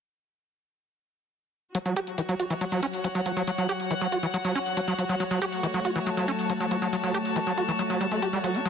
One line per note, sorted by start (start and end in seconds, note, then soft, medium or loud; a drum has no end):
1.75 1.78 F#3 loud
1.75 8.69 F#3 medium
1.75 8.69 F#4 medium
1.75 5.22 F#4 medium
1.75 closed hi-hat medium
1.86 1.94 F#3 loud
1.86 closed hi-hat medium
1.96 2.00 G4 loud
1.96 closed hi-hat medium
2.07 closed hi-hat medium
2.18 2.22 E3 medium
2.18 closed hi-hat medium
2.28 2.35 F#3 loud
2.28 8.69 C#5 medium
2.28 closed hi-hat medium
2.40 2.45 F#4 medium
2.40 closed hi-hat medium
2.50 2.54 E3 loud
2.50 closed hi-hat medium
2.61 2.65 F#3 loud
2.61 6.08 F#5 medium
2.61 closed hi-hat medium
2.72 2.81 F#3 loud
2.72 closed hi-hat medium
2.83 2.86 C#4 loud
2.83 closed hi-hat medium
2.93 closed hi-hat medium
3.04 3.08 F#3 medium
3.04 closed hi-hat medium
3.15 3.21 F#3 loud
3.15 closed hi-hat medium
3.26 3.32 F#3 medium
3.26 closed hi-hat medium
3.37 3.43 F#3 loud
3.37 closed hi-hat medium
3.47 3.51 F#3 loud
3.47 closed hi-hat medium
3.58 3.67 F#3 loud
3.58 closed hi-hat medium
3.69 3.73 G4 loud
3.69 closed hi-hat medium
3.80 closed hi-hat medium
3.91 3.94 E3 medium
3.91 closed hi-hat medium
4.01 4.07 F#3 loud
4.01 closed hi-hat medium
4.12 4.18 F#4 medium
4.12 closed hi-hat medium
4.23 4.27 E3 loud
4.23 closed hi-hat medium
4.34 4.37 F#3 loud
4.34 closed hi-hat medium
4.45 4.53 F#3 loud
4.45 closed hi-hat soft
4.55 4.59 C#4 loud
4.55 closed hi-hat medium
4.66 closed hi-hat medium
4.77 4.80 F#3 medium
4.77 closed hi-hat medium
4.88 4.94 F#3 loud
4.88 closed hi-hat medium
4.98 5.04 F#3 medium
4.98 closed hi-hat medium
5.09 5.15 F#3 loud
5.09 closed hi-hat medium
5.20 5.24 F#3 loud
5.20 8.68 A3 medium
5.20 closed hi-hat medium
5.31 5.40 F#3 loud
5.31 closed hi-hat medium
5.42 5.45 G4 loud
5.42 closed hi-hat medium
5.52 closed hi-hat soft
5.63 5.67 E3 medium
5.63 closed hi-hat medium
5.74 5.80 F#3 loud
5.74 closed hi-hat soft
5.85 5.91 F#4 medium
5.85 closed hi-hat medium
5.96 5.99 E3 loud
5.96 closed hi-hat medium
6.06 6.10 F#3 loud
6.06 8.69 A5 medium
6.06 closed hi-hat medium
6.17 6.26 F#3 loud
6.17 closed hi-hat medium
6.28 6.32 C#4 loud
6.28 closed hi-hat medium
6.39 closed hi-hat soft
6.50 6.53 F#3 medium
6.50 closed hi-hat medium
6.60 6.66 F#3 loud
6.60 closed hi-hat soft
6.71 6.77 F#3 medium
6.71 closed hi-hat medium
6.82 6.88 F#3 loud
6.82 closed hi-hat soft
6.93 6.96 F#3 loud
6.93 closed hi-hat medium
7.04 7.12 F#3 loud
7.04 closed hi-hat soft
7.14 7.18 G4 loud
7.14 closed hi-hat medium
7.25 closed hi-hat soft
7.36 7.39 E3 medium
7.36 closed hi-hat medium
7.47 7.53 F#3 loud
7.47 closed hi-hat soft
7.58 7.63 F#4 medium
7.58 closed hi-hat medium
7.68 7.72 E3 loud
7.68 closed hi-hat soft
7.79 7.83 F#3 loud
7.79 closed hi-hat medium
7.90 7.99 F#3 loud
7.90 closed hi-hat soft
8.01 8.07 G3 medium
8.01 closed hi-hat medium
8.11 8.20 A3 medium
8.11 closed hi-hat soft
8.22 8.28 G4 medium
8.22 closed hi-hat medium
8.33 8.39 G3 loud
8.33 closed hi-hat soft
8.44 8.56 F#3 medium
8.44 closed hi-hat medium
8.55 8.61 C#4 medium
8.55 closed hi-hat soft
8.65 8.69 F#3 loud
8.65 8.69 F#4 medium
8.65 closed hi-hat medium